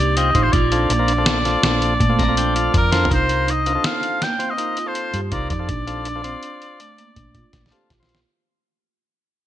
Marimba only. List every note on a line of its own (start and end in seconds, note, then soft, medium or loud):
0.00 0.24 G4 medium
0.35 0.48 D#4 medium
0.54 0.66 F4 medium
0.72 0.84 D4 medium
0.90 1.03 A#3 medium
1.08 1.34 D4 medium
1.64 1.77 D4 medium
1.82 1.95 A#3 medium
2.00 2.13 A3 medium
2.19 2.32 C4 medium
2.38 2.50 D4 medium
2.56 2.81 F4 medium
2.93 3.05 D4 medium
3.11 3.36 D#4 medium
3.48 3.60 D#4 medium
3.66 3.79 D4 medium
3.85 4.10 D#4 medium
4.22 4.34 A#3 medium
4.40 4.53 C4 medium
4.58 4.71 D#4 medium
4.77 5.02 F4 medium
5.14 5.27 G4 medium
5.32 5.45 D#4 medium
5.51 5.63 D#4 medium
5.69 5.95 D4 medium
6.06 6.19 D4 medium
6.25 6.37 C4 medium
6.43 6.69 D4 medium
6.80 6.92 A3 medium
6.99 7.11 A#3 medium
7.17 7.29 D4 medium
7.35 7.61 F4 medium
7.72 7.85 G4 medium
7.90 8.03 F4 medium
8.09 8.22 F4 medium